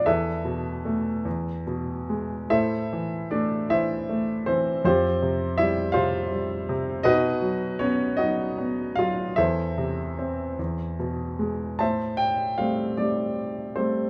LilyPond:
<<
  \new Staff \with { instrumentName = "Grand piano" } { \time 6/8 \key a \minor \tempo 4. = 51 << { e''2 r4 | e''4 d''8 e''4 c''8 | c''4 e''8 f''4 r8 | dis''4 cis''8 dis''4 f''8 |
e''2 r4 | a''8 g''8 f''8 d''4 c''8 | } \\ { <e' a' b'>2 r4 | <e' a' c''>4 d'8 <e' c''>4 c'8 | <c' f' g'>4 e'8 <f' c''>4 r8 | <dis' fis' b'>4 cis'8 <dis' fis'>4 f'8 |
<e' a' c''>2 r4 | <c'' e''>4. g'4. | } >> }
  \new Staff \with { instrumentName = "Grand piano" } { \clef bass \time 6/8 \key a \minor e,8 b,8 a8 e,8 b,8 gis8 | a,8 e8 a8 e8 a8 e8 | f,8 c8 g8 c8 g8 c8 | b,8 fis8 b8 fis8 b8 fis8 |
e,8 c8 c'8 e,8 b,8 gis8 | a,4 <g a c'>8 <g a c'>4 <g a c'>8 | }
>>